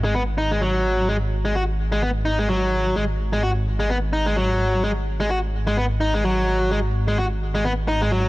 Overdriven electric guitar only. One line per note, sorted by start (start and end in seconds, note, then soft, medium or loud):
0.04 0.14 G#3 medium
0.14 0.22 B3 medium
0.38 0.50 D#4 medium
0.51 0.60 G#3 medium
0.62 1.07 F#3 medium
1.09 1.16 G#3 medium
1.45 1.54 G#3 loud
1.55 1.62 F#4 medium
1.92 2.01 G#3 medium
2.02 2.09 B3 medium
2.25 2.38 D#4 medium
2.39 2.48 G#3 loud
2.49 2.95 F#3 medium
2.96 3.03 G#3 medium
3.33 3.42 G#3 medium
3.43 3.50 F#4 medium
3.80 3.89 G#3 medium
3.90 3.97 B3 medium
4.13 4.25 D#4 medium
4.26 4.35 G#3 loud
4.36 4.82 F#3 medium
4.83 4.91 G#3 medium
5.20 5.29 G#3 loud
5.30 5.37 F#4 medium
5.67 5.76 G#3 medium
5.77 5.84 B3 medium
6.01 6.13 D#4 medium
6.14 6.23 G#3 medium
6.24 6.70 F#3 medium
6.71 6.78 G#3 medium
7.08 7.17 G#3 medium
7.18 7.25 F#4 medium
7.55 7.64 G#3 medium
7.65 7.72 B3 medium
7.88 8.00 D#4 medium
8.02 8.10 G#3 medium
8.12 8.29 F#3 medium